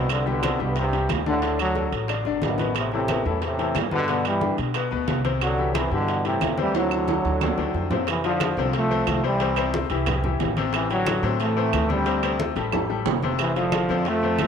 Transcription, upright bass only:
0.00 0.54 C2 medium
0.60 1.06 C2 medium
1.09 1.87 D2 medium
1.92 2.23 A1 medium
2.26 2.41 G1 medium
2.42 3.20 A1 medium
3.25 3.72 E2 medium
3.75 4.53 G2 medium
4.58 4.89 B2 medium
4.92 5.07 D2 medium
5.08 5.86 C2 medium
5.91 6.38 G2 medium
6.41 7.19 D2 medium
7.25 7.56 D2 medium
7.57 7.73 D2 medium
7.74 8.52 F2 medium
8.57 9.04 C2 medium
9.07 9.85 C2 medium
9.90 10.37 C2 medium
10.40 11.18 A1 medium
11.23 11.69 A2 loud
11.73 12.50 D2 medium
12.56 13.02 A1 medium
13.06 13.83 F1 medium
13.89 14.35 F2 medium
14.39 14.47 G2 medium

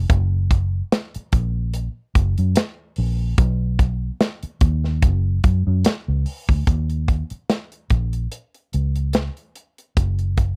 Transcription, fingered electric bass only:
0.10 0.81 F#1 loud
1.16 muted fingered electric bass stroke soft
1.33 1.88 A#1 medium
2.16 2.34 F#1 medium
2.39 2.54 F#2 medium
2.98 3.33 A#1 medium
3.38 4.09 B1 loud
4.43 muted fingered electric bass stroke soft
4.61 5.05 D#2 medium
5.03 5.39 F#1 loud
5.44 5.63 F#2 medium
5.67 5.83 F#2 medium
5.86 muted fingered electric bass stroke soft
6.08 6.24 C#2 medium
6.49 6.65 D2 medium
6.67 7.22 D#2 medium
7.31 muted fingered electric bass stroke soft
7.91 8.26 A#1 medium
8.74 9.29 C#2 medium
9.97 10.52 F#1 medium

